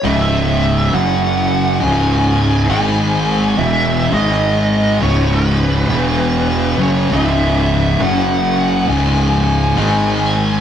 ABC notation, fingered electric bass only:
X:1
M:4/4
L:1/8
Q:"Swing" 1/4=68
K:C#m
V:1 name="Fingered electric bass" clef=bass
C,,,2 F,,,2 C,,,2 G,,,2 | E,,, G,,,2 C,,,2 E,,,2 F,,, | C,,,2 F,,,2 C,,,2 G,,,2 |]